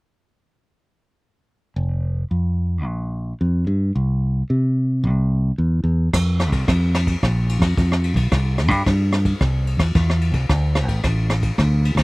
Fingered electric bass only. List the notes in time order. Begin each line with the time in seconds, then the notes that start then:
1.76 F1
2.31 F2
2.86 A#1
3.41 F2
3.67 G2
3.95 C2
4.50 C3
5.04 C2
5.58 E2
5.84 E2
6.13 F2
6.50 C2
6.68 F2
7.23 A#1
7.59 F2
7.78 F2
8.14 B1
8.31 C2
8.68 G2
8.86 G2
9.41 C2
9.77 E2
9.95 E2
10.32 C2
10.49 D2
10.86 A1
11.04 A1
11.58 D2
11.95 D2